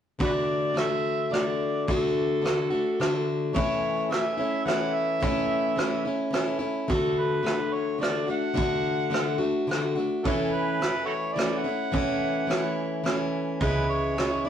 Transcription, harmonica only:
0.24 F#4 B4 D5
0.79 A4 C#5 E5
1.33 D5
1.93 A4
3.54 C#5
4.11 E5
4.65 F#5
4.95 E5
6.90 A4
7.19 B4
7.73 C#5
8.01 D5
8.30 F#5
10.24 D4 F#4 A4
10.53 B4
11.06 F#4 A4 C#5
11.33 D5
11.59 F#5
13.61 B4
13.90 C#5
14.46 D5

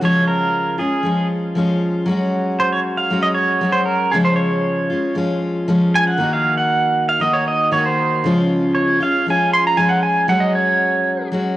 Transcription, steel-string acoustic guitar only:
0.01 C#3 F3 G#3 C#4 F4
0.78 G#3 C#4 F4
1.03 F3 G#3 C#4 F4
1.55 F3 G#3 C#4 F4
2.06 F#3 G#3 C#4
2.11 F#4
3.10 F#3 G#3 C#4 F#4
3.61 F#3 G#3 C#4 F#4
4.13 C#3 F3 G#3 C#4 F4
4.90 G#3 C#4 F4
5.15 F3 G#3 C#4 F4
5.68 F3 G#3 C#4 F4
6.18 D#3 A#3 D#4
6.23 F#4
7.20 D#3 A#3 D#4 F#4
7.71 D#3 A#3 D#4 F#4
8.24 C#3 F3 G#3 C#4 F4
9.00 G#3 C#4 F4
9.26 F3 G#3 C#4 F4
9.77 F3 G#3 C#4 F4
10.28 F#3 G#3 C#4
10.32 F#4
11.32 F#3 G#3 C#4 F#4

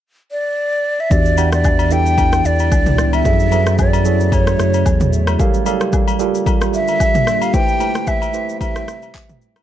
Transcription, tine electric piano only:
1.10 E3 D4 F#4 G4 E5
1.37 E3 D4 G4 F#5 G5
1.90 E3 D4 E4 G4 A4
3.24 F#3 F#4 G#4 A4 E5
3.51 F#3 F#4 G#4 A4 B4
4.05 F#3 F#4 G#4 A4 C#5
5.39 G3 G4 A4 A#4 F5
5.66 G3 G4 A4 A#4 F5
6.19 G3 F4 G4 A4 A#4
7.53 A3 E4 G4 B4 C5
7.80 A3 E4 G4 B4 C5
8.33 A3 E4 G4 B4 C5

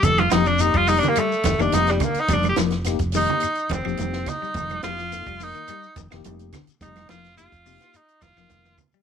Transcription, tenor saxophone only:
0.04 A4
0.20 F4
0.31 D#4
0.47 D4
0.61 D#4
0.77 F4
0.88 D#4
0.99 D4
1.09 A#3
1.19 A3
1.61 D4
1.74 D#4
1.91 G3
2.04 A#3
2.20 D#4
2.33 D4
2.49 G4
3.17 D#4
3.74 C4
4.29 D#4
4.84 F4
5.43 D#4
6.83 D#4
7.10 F4
7.37 F4
7.96 D#4
8.22 F4

